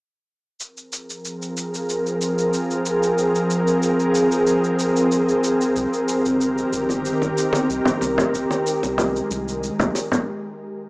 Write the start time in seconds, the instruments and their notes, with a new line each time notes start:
0.60 ambient pad F3 C4 G#4 A#4, cabasa
0.77 cabasa
0.93 cabasa
1.10 cabasa
1.25 cabasa
1.42 cabasa
1.57 cabasa
1.74 cabasa
1.90 cabasa
2.07 cabasa
2.22 cabasa
2.39 cabasa
2.54 cabasa
2.71 cabasa
2.86 cabasa
3.03 cabasa
3.18 cabasa
3.35 cabasa
3.51 cabasa
3.68 cabasa
3.83 cabasa
4.00 cabasa
4.15 cabasa
4.32 cabasa
4.47 cabasa
4.64 cabasa
4.80 cabasa
4.97 cabasa
5.12 cabasa
5.29 cabasa
5.44 cabasa
5.61 cabasa
5.76 analog synth bass C2, ambient pad D#3 G4 A#4, cabasa
5.93 cabasa
6.09 cabasa
6.25 analog synth bass G1, cabasa
6.41 cabasa
6.58 cabasa
6.72 analog synth bass G1, cabasa
6.89 high conga, cabasa
7.05 cabasa
7.22 analog synth bass G1, muted conga, cabasa
7.38 cabasa
7.53 muted conga, high conga, cabasa
7.69 analog synth bass C2, cabasa
7.85 muted conga, low conga, cabasa
8.01 analog synth bass C2, high conga, cabasa
8.18 low conga, cabasa
8.34 analog synth bass F1, ambient pad G#3, cabasa
8.51 muted conga, cabasa
8.67 cabasa
8.83 analog synth bass C2, muted conga, cabasa
8.98 low conga, cabasa
9.16 cabasa
9.31 analog synth bass C2, cabasa
9.48 cabasa
9.64 cabasa
9.79 analog synth bass C2, high conga, low conga, cabasa
9.95 muted conga, cabasa
10.12 low conga, cabasa